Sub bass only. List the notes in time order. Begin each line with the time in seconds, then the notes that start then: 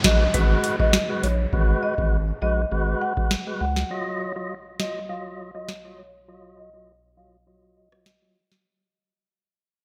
0.05 A#1
0.34 G#1
1.23 A#1
1.53 G#1
1.98 G#1
2.42 A#1
2.72 G#1
3.61 C#2